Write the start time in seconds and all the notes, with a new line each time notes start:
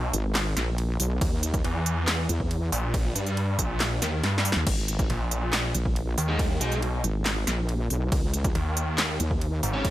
Already playing: B1
0.13 G#1, closed hi-hat
0.35 snare, clap, ride
0.57 A#1, snare, closed hi-hat
0.78 ride
1.00 B1, open hi-hat
1.21 D#2, kick, ride
1.43 closed hi-hat
1.54 kick, closed hi-hat
1.64 E2, ride
1.86 closed hi-hat
2.08 snare, clap, ride
2.29 E2, closed hi-hat
2.40 kick
2.51 ride
2.72 A#1, open hi-hat
2.94 kick, ride
3.16 G2, closed hi-hat
3.26 closed hi-hat
3.37 ride
3.59 A#1, kick, closed hi-hat
3.80 snare, clap, ride
4.02 D#2, snare, closed hi-hat
4.23 G2, snare, ride
4.38 snare
4.45 open hi-hat
4.52 D#2, snare
4.67 G#1, kick, crash, ride
4.88 closed hi-hat
4.99 kick, closed hi-hat
5.10 A#1, ride
5.31 closed hi-hat
5.53 snare, clap, ride
5.75 A#1, closed hi-hat
5.85 kick
5.96 ride
6.18 D#2, open hi-hat
6.28 G#3 D#4 G#4
6.39 kick, ride
6.61 B1 G#3 D#4 G#4, closed hi-hat
6.72 closed hi-hat
6.82 ride
7.04 G#1, closed hi-hat
7.26 snare, clap, ride
7.47 A#1, snare, closed hi-hat
7.69 ride
7.90 B1, open hi-hat
8.12 C#2, kick, ride
8.34 closed hi-hat
8.44 kick, closed hi-hat
8.55 D#2, ride
8.77 closed hi-hat
8.98 snare, clap, ride
9.20 D#2, closed hi-hat
9.31 kick
9.41 ride
9.63 G#1, open hi-hat
9.74 C#4 G#4 C#5
9.85 kick, ride